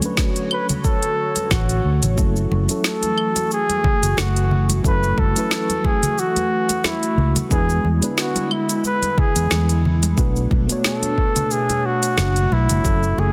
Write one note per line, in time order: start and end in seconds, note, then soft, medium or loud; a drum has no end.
0.00 2.15 D3 medium
0.00 2.16 F#3 medium
0.00 2.17 A3 medium
0.00 0.03 C#4 medium
0.00 2.14 C#4 medium
0.00 0.04 D4 medium
0.00 2.15 F#4 medium
0.00 2.19 A4 loud
0.00 2.15 C#5 medium
0.00 closed hi-hat medium
0.00 high conga medium
0.00 cabasa medium
0.04 2.15 D4 medium
0.04 2.15 B4 medium
0.17 kick loud
0.17 snare loud
0.17 cabasa soft
0.36 closed hi-hat soft
0.36 cabasa soft
0.51 0.67 B4 loud
0.51 claves medium
0.69 closed hi-hat medium
0.69 high conga medium
0.69 low conga medium
0.69 cabasa medium
0.84 1.53 A4 loud
0.84 kick loud
0.84 cabasa soft
1.02 closed hi-hat soft
1.02 cabasa soft
1.36 closed hi-hat medium
1.36 high conga medium
1.36 cabasa medium
1.51 1.79 A1 loud
1.51 2.03 F#4 medium
1.51 kick loud
1.51 snare loud
1.51 cabasa medium
1.51 claves medium
1.69 closed hi-hat soft
1.69 cabasa soft
1.84 1.99 D2 medium
2.02 2.15 A1 medium
2.02 closed hi-hat medium
2.02 high conga medium
2.02 low conga medium
2.02 cabasa medium
2.16 2.46 F#1 loud
2.16 7.47 E3 medium
2.16 2.64 F#3 medium
2.16 2.65 A3 medium
2.16 7.47 A3 medium
2.16 2.65 C#4 medium
2.16 2.65 E4 medium
2.16 7.47 F#4 medium
2.16 2.66 A4 medium
2.16 kick loud
2.16 muted conga medium
2.16 cabasa medium
2.36 cabasa soft
2.51 2.66 F#1 medium
2.51 muted conga medium
2.51 high conga medium
2.68 2.78 F#3 medium
2.68 2.79 A3 medium
2.68 2.79 C#4 medium
2.68 2.79 E4 medium
2.68 2.80 A4 medium
2.68 closed hi-hat medium
2.68 cabasa medium
2.84 3.48 A4 medium
2.84 snare loud
2.84 cabasa medium
3.03 closed hi-hat soft
3.03 muted conga medium
3.03 high conga medium
3.03 cabasa soft
3.18 claves medium
3.36 closed hi-hat medium
3.36 muted conga medium
3.36 cabasa medium
3.51 4.21 G#4 loud
3.51 cabasa soft
3.69 closed hi-hat soft
3.69 high conga medium
3.69 cabasa soft
3.84 kick loud
3.84 muted conga soft
3.84 low conga medium
4.03 4.15 F#1 medium
4.03 closed hi-hat medium
4.03 cabasa medium
4.17 4.80 F#1 medium
4.17 4.70 F#4 medium
4.17 snare loud
4.17 muted conga medium
4.17 high conga medium
4.17 cabasa medium
4.36 closed hi-hat soft
4.36 cabasa soft
4.51 low conga loud
4.69 closed hi-hat medium
4.69 muted conga medium
4.69 high conga medium
4.69 cabasa medium
4.83 5.12 F#1 loud
4.83 5.31 F#3 medium
4.83 5.31 A3 medium
4.83 5.32 C#4 medium
4.83 5.32 E4 medium
4.83 5.32 A4 medium
4.83 5.21 B4 loud
4.83 kick loud
4.83 cabasa medium
5.03 muted conga medium
5.03 cabasa soft
5.18 5.33 F#1 medium
5.18 5.88 A4 loud
5.18 kick loud
5.18 high conga loud
5.33 7.46 F#3 medium
5.33 7.47 A3 medium
5.33 7.47 C#4 medium
5.33 closed hi-hat medium
5.33 cabasa medium
5.37 7.48 E4 medium
5.37 7.49 B4 medium
5.51 snare loud
5.51 muted conga medium
5.51 cabasa medium
5.69 closed hi-hat soft
5.69 high conga medium
5.69 cabasa soft
5.84 6.21 G#4 medium
5.84 kick medium
5.84 muted conga medium
6.03 closed hi-hat medium
6.03 low conga medium
6.03 cabasa medium
6.18 6.87 F#4 loud
6.18 cabasa medium
6.36 closed hi-hat soft
6.36 muted conga medium
6.36 high conga loud
6.36 cabasa soft
6.69 closed hi-hat medium
6.69 muted conga medium
6.69 cabasa medium
6.84 7.37 E4 medium
6.84 snare loud
6.84 high conga medium
6.84 cabasa medium
7.03 closed hi-hat soft
7.03 cabasa soft
7.17 7.33 C#2 loud
7.17 muted conga soft
7.36 closed hi-hat medium
7.36 high conga medium
7.36 low conga medium
7.36 cabasa medium
7.49 7.79 E2 loud
7.49 10.15 D3 medium
7.49 7.97 G#3 medium
7.49 10.15 G#3 medium
7.49 7.98 B3 medium
7.49 7.98 D4 medium
7.49 10.15 E4 medium
7.49 7.99 E4 medium
7.49 7.89 G#4 loud
7.49 7.99 B4 medium
7.49 kick loud
7.49 muted conga medium
7.49 cabasa medium
7.69 cabasa soft
7.84 7.99 E2 medium
7.84 high conga medium
8.01 8.11 G#3 medium
8.01 8.12 B3 medium
8.01 8.12 D4 medium
8.01 8.12 E4 medium
8.01 8.13 B4 medium
8.01 closed hi-hat soft
8.01 muted conga soft
8.01 cabasa medium
8.18 8.54 F#4 medium
8.18 snare loud
8.18 cabasa medium
8.36 closed hi-hat soft
8.36 muted conga medium
8.36 high conga medium
8.36 cabasa soft
8.51 8.85 E4 medium
8.51 claves medium
8.69 closed hi-hat medium
8.69 cabasa medium
8.84 9.20 B4 loud
8.84 muted conga soft
8.84 cabasa medium
9.02 closed hi-hat soft
9.02 high conga medium
9.02 cabasa soft
9.18 9.85 G#4 loud
9.18 kick loud
9.18 muted conga medium
9.18 low conga medium
9.36 9.48 E2 loud
9.36 closed hi-hat medium
9.36 cabasa medium
9.51 10.13 E2 medium
9.51 snare loud
9.51 high conga medium
9.51 cabasa medium
9.69 closed hi-hat soft
9.69 muted conga soft
9.69 cabasa soft
9.85 low conga medium
10.03 closed hi-hat medium
10.03 muted conga medium
10.03 high conga medium
10.03 cabasa medium
10.16 10.45 B1 medium
10.16 12.82 B2 medium
10.16 10.64 A3 medium
10.16 13.33 A3 medium
10.16 10.65 B3 medium
10.16 10.65 D4 medium
10.16 12.82 D4 medium
10.16 10.65 F#4 medium
10.16 10.66 B4 medium
10.16 kick loud
10.16 cabasa medium
10.36 cabasa soft
10.51 10.66 B1 loud
10.51 kick loud
10.51 muted conga soft
10.51 high conga medium
10.67 12.79 A3 medium
10.67 12.80 B3 medium
10.67 12.81 D4 medium
10.67 closed hi-hat soft
10.67 cabasa medium
10.71 12.81 F#4 medium
10.71 12.82 C#5 medium
10.84 11.53 A4 medium
10.84 snare loud
10.84 muted conga medium
10.84 cabasa medium
11.02 closed hi-hat soft
11.02 high conga medium
11.02 cabasa soft
11.18 kick medium
11.35 closed hi-hat medium
11.35 muted conga soft
11.35 low conga medium
11.35 cabasa medium
11.51 11.87 G#4 medium
11.51 cabasa medium
11.69 closed hi-hat soft
11.69 muted conga medium
11.69 high conga loud
11.69 cabasa soft
11.86 12.54 F#4 loud
12.03 closed hi-hat medium
12.03 cabasa medium
12.18 12.45 F#1 loud
12.18 snare loud
12.18 muted conga soft
12.18 high conga medium
12.18 cabasa medium
12.36 closed hi-hat soft
12.36 cabasa soft
12.51 12.66 B1 medium
12.51 13.20 E4 medium
12.51 muted conga medium
12.69 12.82 F#1 medium
12.69 closed hi-hat medium
12.69 high conga medium
12.69 low conga medium
12.69 cabasa medium
12.83 13.12 F#1 medium
12.83 13.33 E3 medium
12.83 13.31 F#3 medium
12.83 13.31 A3 medium
12.83 13.32 C#4 medium
12.83 13.32 E4 medium
12.83 13.33 F#4 medium
12.83 13.32 A4 medium
12.83 kick loud
12.83 muted conga medium
12.83 cabasa medium
13.03 cabasa soft
13.18 13.33 F#1 medium
13.18 13.33 G#4 loud
13.18 muted conga medium
13.18 high conga medium